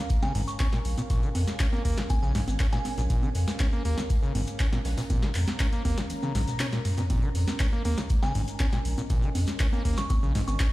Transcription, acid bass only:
0, 0, Header, 1, 2, 480
1, 0, Start_track
1, 0, Key_signature, -5, "minor"
1, 0, Tempo, 500000
1, 1056, Time_signature, 4, 2, 24, 8
1, 10298, End_track
2, 0, Start_track
2, 0, Title_t, "Acid bass"
2, 0, Program_c, 0, 38
2, 218, Note_on_c, 0, 49, 76
2, 316, Note_off_c, 0, 49, 0
2, 336, Note_on_c, 0, 44, 103
2, 403, Note_off_c, 0, 44, 0
2, 576, Note_on_c, 0, 61, 99
2, 643, Note_off_c, 0, 61, 0
2, 698, Note_on_c, 0, 46, 79
2, 763, Note_off_c, 0, 46, 0
2, 938, Note_on_c, 0, 46, 76
2, 977, Note_off_c, 0, 46, 0
2, 1057, Note_on_c, 0, 46, 88
2, 1178, Note_on_c, 0, 51, 81
2, 1192, Note_off_c, 0, 46, 0
2, 1243, Note_off_c, 0, 51, 0
2, 1536, Note_on_c, 0, 61, 107
2, 1603, Note_off_c, 0, 61, 0
2, 1657, Note_on_c, 0, 58, 80
2, 1755, Note_off_c, 0, 58, 0
2, 1776, Note_on_c, 0, 58, 97
2, 1897, Note_on_c, 0, 46, 81
2, 1911, Note_off_c, 0, 58, 0
2, 1936, Note_off_c, 0, 46, 0
2, 2137, Note_on_c, 0, 49, 80
2, 2235, Note_off_c, 0, 49, 0
2, 2256, Note_on_c, 0, 44, 100
2, 2323, Note_off_c, 0, 44, 0
2, 2496, Note_on_c, 0, 61, 106
2, 2563, Note_off_c, 0, 61, 0
2, 2616, Note_on_c, 0, 46, 82
2, 2682, Note_off_c, 0, 46, 0
2, 2857, Note_on_c, 0, 46, 78
2, 2897, Note_off_c, 0, 46, 0
2, 2976, Note_on_c, 0, 46, 88
2, 3098, Note_on_c, 0, 51, 76
2, 3112, Note_off_c, 0, 46, 0
2, 3163, Note_off_c, 0, 51, 0
2, 3457, Note_on_c, 0, 61, 103
2, 3523, Note_off_c, 0, 61, 0
2, 3578, Note_on_c, 0, 58, 80
2, 3676, Note_off_c, 0, 58, 0
2, 3697, Note_on_c, 0, 58, 99
2, 3818, Note_on_c, 0, 46, 82
2, 3832, Note_off_c, 0, 58, 0
2, 3857, Note_off_c, 0, 46, 0
2, 4058, Note_on_c, 0, 49, 75
2, 4156, Note_off_c, 0, 49, 0
2, 4177, Note_on_c, 0, 44, 99
2, 4243, Note_off_c, 0, 44, 0
2, 4417, Note_on_c, 0, 61, 100
2, 4483, Note_off_c, 0, 61, 0
2, 4538, Note_on_c, 0, 46, 80
2, 4603, Note_off_c, 0, 46, 0
2, 4778, Note_on_c, 0, 46, 84
2, 4817, Note_off_c, 0, 46, 0
2, 4897, Note_on_c, 0, 46, 90
2, 5018, Note_on_c, 0, 51, 79
2, 5033, Note_off_c, 0, 46, 0
2, 5083, Note_off_c, 0, 51, 0
2, 5377, Note_on_c, 0, 61, 104
2, 5443, Note_off_c, 0, 61, 0
2, 5498, Note_on_c, 0, 58, 77
2, 5596, Note_off_c, 0, 58, 0
2, 5616, Note_on_c, 0, 58, 98
2, 5738, Note_on_c, 0, 46, 76
2, 5752, Note_off_c, 0, 58, 0
2, 5777, Note_off_c, 0, 46, 0
2, 5977, Note_on_c, 0, 49, 77
2, 6075, Note_off_c, 0, 49, 0
2, 6096, Note_on_c, 0, 44, 107
2, 6163, Note_off_c, 0, 44, 0
2, 6336, Note_on_c, 0, 61, 101
2, 6403, Note_off_c, 0, 61, 0
2, 6458, Note_on_c, 0, 46, 75
2, 6523, Note_off_c, 0, 46, 0
2, 6697, Note_on_c, 0, 46, 77
2, 6737, Note_off_c, 0, 46, 0
2, 6816, Note_on_c, 0, 46, 90
2, 6937, Note_on_c, 0, 51, 80
2, 6951, Note_off_c, 0, 46, 0
2, 7002, Note_off_c, 0, 51, 0
2, 7296, Note_on_c, 0, 61, 105
2, 7363, Note_off_c, 0, 61, 0
2, 7417, Note_on_c, 0, 58, 81
2, 7515, Note_off_c, 0, 58, 0
2, 7536, Note_on_c, 0, 58, 98
2, 7657, Note_on_c, 0, 46, 81
2, 7671, Note_off_c, 0, 58, 0
2, 7696, Note_off_c, 0, 46, 0
2, 7897, Note_on_c, 0, 49, 75
2, 7995, Note_off_c, 0, 49, 0
2, 8016, Note_on_c, 0, 44, 101
2, 8083, Note_off_c, 0, 44, 0
2, 8256, Note_on_c, 0, 61, 103
2, 8323, Note_off_c, 0, 61, 0
2, 8377, Note_on_c, 0, 46, 76
2, 8443, Note_off_c, 0, 46, 0
2, 8618, Note_on_c, 0, 46, 81
2, 8657, Note_off_c, 0, 46, 0
2, 8736, Note_on_c, 0, 46, 86
2, 8857, Note_on_c, 0, 51, 75
2, 8872, Note_off_c, 0, 46, 0
2, 8923, Note_off_c, 0, 51, 0
2, 9217, Note_on_c, 0, 61, 106
2, 9283, Note_off_c, 0, 61, 0
2, 9338, Note_on_c, 0, 58, 79
2, 9436, Note_off_c, 0, 58, 0
2, 9457, Note_on_c, 0, 58, 103
2, 9578, Note_on_c, 0, 46, 76
2, 9592, Note_off_c, 0, 58, 0
2, 9617, Note_off_c, 0, 46, 0
2, 9818, Note_on_c, 0, 49, 78
2, 9916, Note_off_c, 0, 49, 0
2, 9937, Note_on_c, 0, 44, 106
2, 10003, Note_off_c, 0, 44, 0
2, 10177, Note_on_c, 0, 61, 107
2, 10243, Note_off_c, 0, 61, 0
2, 10298, End_track
0, 0, End_of_file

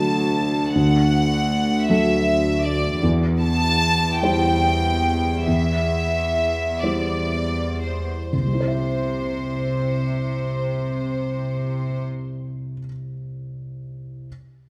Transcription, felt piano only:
0, 0, Header, 1, 2, 480
1, 0, Start_track
1, 0, Tempo, 763359
1, 463, Time_signature, 6, 3, 24, 8
1, 1904, Tempo, 795756
1, 2864, Tempo, 845070
1, 3344, Tempo, 896861
1, 3824, Tempo, 946372
1, 4304, Tempo, 993377
1, 7872, End_track
2, 0, Start_track
2, 0, Title_t, "Felt piano"
2, 0, Program_c, 0, 0
2, 0, Control_c, 0, 64, 127
2, 0, Note_on_c, 0, 38, 37
2, 0, Note_on_c, 0, 54, 30
2, 0, Note_on_c, 0, 66, 29
2, 0, Note_on_c, 0, 69, 35
2, 441, Note_off_c, 0, 54, 0
2, 443, Note_off_c, 0, 66, 0
2, 444, Note_off_c, 0, 69, 0
2, 474, Note_off_c, 0, 38, 0
2, 474, Note_on_c, 0, 38, 42
2, 475, Control_c, 0, 64, 0
2, 584, Control_c, 0, 64, 127
2, 1167, Note_off_c, 0, 38, 0
2, 1193, Note_on_c, 0, 54, 36
2, 1194, Note_on_c, 0, 69, 38
2, 1198, Note_on_c, 0, 66, 36
2, 1884, Note_off_c, 0, 54, 0
2, 1885, Note_off_c, 0, 69, 0
2, 1886, Note_off_c, 0, 66, 0
2, 1904, Note_on_c, 0, 40, 49
2, 1915, Control_c, 0, 64, 0
2, 2010, Control_c, 0, 64, 127
2, 2598, Note_off_c, 0, 40, 0
2, 2626, Note_on_c, 0, 55, 37
2, 2628, Note_on_c, 0, 64, 34
2, 2630, Note_on_c, 0, 72, 36
2, 3324, Note_off_c, 0, 55, 0
2, 3325, Note_off_c, 0, 64, 0
2, 3326, Note_off_c, 0, 72, 0
2, 3348, Note_on_c, 0, 40, 36
2, 3355, Control_c, 0, 64, 0
2, 3467, Control_c, 0, 64, 127
2, 4041, Note_off_c, 0, 40, 0
2, 4063, Note_on_c, 0, 55, 27
2, 4063, Note_on_c, 0, 64, 25
2, 4065, Note_on_c, 0, 72, 28
2, 4776, Note_off_c, 0, 55, 0
2, 4776, Note_off_c, 0, 64, 0
2, 4777, Note_off_c, 0, 72, 0
2, 4798, Note_on_c, 0, 36, 27
2, 4805, Control_c, 0, 64, 0
2, 4828, Note_on_c, 0, 48, 24
2, 4860, Note_on_c, 0, 55, 27
2, 4894, Note_on_c, 0, 64, 26
2, 4921, Control_c, 0, 64, 127
2, 4930, Note_on_c, 0, 72, 27
2, 4963, Note_on_c, 0, 76, 27
2, 6926, Note_off_c, 0, 36, 0
2, 6941, Note_off_c, 0, 48, 0
2, 6958, Note_off_c, 0, 55, 0
2, 6975, Note_off_c, 0, 64, 0
2, 6992, Note_off_c, 0, 72, 0
2, 7009, Note_off_c, 0, 76, 0
2, 7674, Control_c, 0, 64, 0
2, 7872, End_track
0, 0, End_of_file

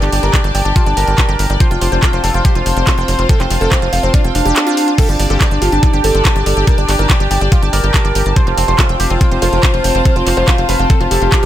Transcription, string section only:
0, 0, Header, 1, 2, 480
1, 0, Start_track
1, 0, Tempo, 422535
1, 1822, Time_signature, 4, 2, 24, 8
1, 13014, End_track
2, 0, Start_track
2, 0, Title_t, "String section"
2, 0, Program_c, 0, 48
2, 0, Note_on_c, 0, 62, 75
2, 0, Note_on_c, 0, 67, 92
2, 0, Note_on_c, 0, 74, 92
2, 0, Note_on_c, 0, 79, 77
2, 1822, Note_on_c, 0, 60, 81
2, 1900, Note_on_c, 0, 65, 86
2, 2288, Note_on_c, 0, 72, 85
2, 2643, Note_off_c, 0, 79, 0
2, 2661, Note_on_c, 0, 77, 78
2, 3055, Note_off_c, 0, 67, 0
2, 3357, Note_off_c, 0, 74, 0
2, 3358, Note_off_c, 0, 62, 0
2, 5662, Note_on_c, 0, 62, 76
2, 5856, Note_on_c, 0, 67, 93
2, 6018, Note_on_c, 0, 79, 77
2, 6170, Note_on_c, 0, 74, 87
2, 6374, Note_off_c, 0, 65, 0
2, 6457, Note_off_c, 0, 72, 0
2, 7198, Note_off_c, 0, 60, 0
2, 7198, Note_off_c, 0, 77, 0
2, 9502, Note_on_c, 0, 60, 94
2, 9568, Note_on_c, 0, 65, 97
2, 9599, Note_on_c, 0, 77, 79
2, 10054, Note_on_c, 0, 72, 90
2, 10147, Note_off_c, 0, 79, 0
2, 10222, Note_off_c, 0, 62, 0
2, 10467, Note_off_c, 0, 67, 0
2, 10700, Note_off_c, 0, 74, 0
2, 13014, Note_off_c, 0, 60, 0
2, 13014, Note_off_c, 0, 65, 0
2, 13014, Note_off_c, 0, 72, 0
2, 13014, Note_off_c, 0, 77, 0
2, 13014, End_track
0, 0, End_of_file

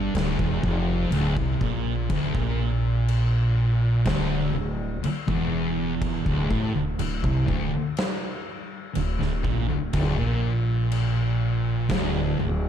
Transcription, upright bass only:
0, 0, Header, 1, 3, 480
1, 0, Start_track
1, 0, Key_signature, -1, "minor"
1, 0, Tempo, 978953
1, 1030, Time_signature, 4, 2, 24, 8
1, 6221, End_track
2, 0, Start_track
2, 0, Title_t, "Upright bass"
2, 0, Program_c, 0, 32
2, 0, Note_on_c, 0, 31, 94
2, 54, Note_off_c, 0, 31, 0
2, 72, Note_on_c, 0, 26, 91
2, 183, Note_off_c, 0, 26, 0
2, 192, Note_on_c, 0, 28, 93
2, 303, Note_off_c, 0, 28, 0
2, 309, Note_on_c, 0, 29, 100
2, 533, Note_off_c, 0, 29, 0
2, 542, Note_on_c, 0, 26, 95
2, 658, Note_off_c, 0, 26, 0
2, 670, Note_on_c, 0, 36, 95
2, 782, Note_off_c, 0, 36, 0
2, 788, Note_on_c, 0, 34, 89
2, 1012, Note_off_c, 0, 34, 0
2, 1028, Note_on_c, 0, 26, 93
2, 1140, Note_off_c, 0, 26, 0
2, 1151, Note_on_c, 0, 34, 91
2, 1971, Note_off_c, 0, 34, 0
2, 1988, Note_on_c, 0, 26, 98
2, 2212, Note_off_c, 0, 26, 0
2, 2222, Note_on_c, 0, 26, 83
2, 2449, Note_off_c, 0, 26, 0
2, 2587, Note_on_c, 0, 28, 90
2, 3049, Note_off_c, 0, 28, 0
2, 3070, Note_on_c, 0, 26, 95
2, 3181, Note_off_c, 0, 26, 0
2, 3188, Note_on_c, 0, 33, 99
2, 3301, Note_off_c, 0, 33, 0
2, 3310, Note_on_c, 0, 26, 81
2, 3422, Note_off_c, 0, 26, 0
2, 3426, Note_on_c, 0, 26, 83
2, 3539, Note_off_c, 0, 26, 0
2, 3550, Note_on_c, 0, 36, 102
2, 3662, Note_off_c, 0, 36, 0
2, 3669, Note_on_c, 0, 26, 98
2, 3781, Note_off_c, 0, 26, 0
2, 4395, Note_on_c, 0, 26, 81
2, 4504, Note_off_c, 0, 26, 0
2, 4515, Note_on_c, 0, 26, 86
2, 4624, Note_off_c, 0, 26, 0
2, 4630, Note_on_c, 0, 34, 99
2, 4742, Note_off_c, 0, 34, 0
2, 4757, Note_on_c, 0, 26, 80
2, 4865, Note_off_c, 0, 26, 0
2, 4871, Note_on_c, 0, 26, 97
2, 4982, Note_off_c, 0, 26, 0
2, 4996, Note_on_c, 0, 34, 96
2, 5814, Note_off_c, 0, 34, 0
2, 5830, Note_on_c, 0, 26, 104
2, 6053, Note_off_c, 0, 26, 0
2, 6077, Note_on_c, 0, 26, 87
2, 6221, Note_off_c, 0, 26, 0
2, 6221, End_track
3, 0, Start_track
3, 0, Title_t, "Muted upright bass strokes"
3, 2469, Note_on_c, 9, 29, 41
3, 2518, Note_off_c, 9, 29, 0
3, 6221, End_track
0, 0, End_of_file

